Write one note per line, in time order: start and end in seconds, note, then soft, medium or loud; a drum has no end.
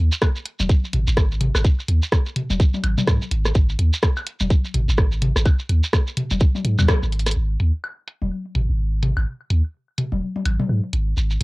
0.12 shekere medium
0.22 kick loud
0.22 cross-stick medium
0.22 high woodblock medium
0.22 shekere medium
0.36 shekere soft
0.46 closed hi-hat loud
0.60 0.68 D#1 medium
0.60 high tom medium
0.60 shekere medium
0.69 kick loud
0.69 shekere medium
0.84 shekere soft
0.93 1.05 G#1 medium
0.93 closed hi-hat medium
0.93 mid tom medium
1.07 1.51 G#1 medium
1.07 shekere medium
1.17 kick loud
1.17 cross-stick medium
1.17 shekere medium
1.32 shekere soft
1.41 closed hi-hat medium
1.41 mid tom medium
1.55 1.63 G#1 medium
1.55 cross-stick medium
1.55 high woodblock medium
1.55 shekere medium
1.65 kick loud
1.65 shekere medium
1.80 shekere soft
1.88 2.00 D#2 loud
1.88 closed hi-hat medium
2.02 shekere medium
2.12 kick loud
2.12 cross-stick medium
2.12 shekere medium
2.26 shekere soft
2.36 closed hi-hat medium
2.36 mid tom medium
2.50 2.58 D#1 loud
2.50 high tom medium
2.50 shekere medium
2.60 kick loud
2.60 shekere medium
2.74 high tom medium
2.74 shekere soft
2.84 2.95 G#1 medium
2.84 closed hi-hat medium
2.84 high woodblock medium
2.98 mid tom medium
2.98 high tom medium
2.98 shekere medium
3.07 3.19 G#2 loud
3.07 kick loud
3.07 cross-stick medium
3.07 shekere medium
3.22 shekere soft
3.31 3.52 G#1 medium
3.31 closed hi-hat medium
3.45 cross-stick medium
3.45 shekere medium
3.55 3.75 G#1 loud
3.55 kick loud
3.55 shekere medium
3.69 shekere soft
3.79 3.90 D#2 loud
3.79 closed hi-hat medium
3.93 shekere medium
4.03 kick loud
4.03 cross-stick medium
4.03 shekere medium
4.17 high woodblock medium
4.17 shekere soft
4.27 closed hi-hat medium
4.40 4.49 D#1 loud
4.40 high tom medium
4.40 shekere medium
4.50 kick loud
4.50 shekere medium
4.65 shekere soft
4.74 4.86 G#1 medium
4.74 closed hi-hat medium
4.74 mid tom medium
4.88 5.32 G#1 medium
4.88 shekere medium
4.97 kick loud
4.97 cross-stick medium
4.97 shekere medium
5.11 shekere soft
5.22 closed hi-hat medium
5.22 mid tom medium
5.36 5.44 G#1 medium
5.36 cross-stick medium
5.36 shekere medium
5.46 kick loud
5.46 high woodblock medium
5.46 shekere medium
5.59 shekere soft
5.69 5.81 D#2 loud
5.69 closed hi-hat medium
5.83 shekere medium
5.93 kick loud
5.93 cross-stick medium
5.93 shekere medium
6.07 shekere soft
6.17 closed hi-hat loud
6.17 mid tom medium
6.31 6.39 D#1 loud
6.31 high tom medium
6.31 shekere medium
6.40 kick loud
6.40 shekere medium
6.55 high tom medium
6.55 shekere soft
6.65 6.76 G#2 loud
6.65 closed hi-hat medium
6.79 6.87 D#2 medium
6.79 mid tom medium
6.79 high tom medium
6.79 high woodblock medium
6.79 shekere medium
6.88 kick loud
6.88 cross-stick loud
6.88 shekere medium
7.03 7.33 G#1 medium
7.03 shekere soft
7.12 closed hi-hat medium
7.19 closed hi-hat medium
7.26 cross-stick medium
7.26 closed hi-hat medium
7.26 shekere medium
7.31 closed hi-hat medium
7.36 7.56 G#1 loud
7.60 7.71 D#2 loud
7.60 closed hi-hat medium
7.84 high woodblock medium
8.07 closed hi-hat medium
8.22 8.30 D#1 medium
8.22 high tom medium
8.55 8.67 G#1 medium
8.55 closed hi-hat medium
8.55 mid tom medium
8.69 9.13 G#1 medium
9.03 closed hi-hat medium
9.03 mid tom medium
9.17 9.25 G#1 medium
9.17 high woodblock medium
9.50 9.62 D#2 loud
9.50 closed hi-hat medium
9.98 closed hi-hat medium
9.98 mid tom medium
10.12 10.20 D#1 medium
10.12 high tom medium
10.36 high tom medium
10.45 10.57 G#1 medium
10.45 closed hi-hat medium
10.45 high woodblock medium
10.60 mid tom medium
10.60 high tom medium
10.69 10.81 G#2 medium
10.93 11.14 G#1 medium
10.93 closed hi-hat medium
11.17 11.37 G#1 loud
11.17 shekere medium
11.30 shekere soft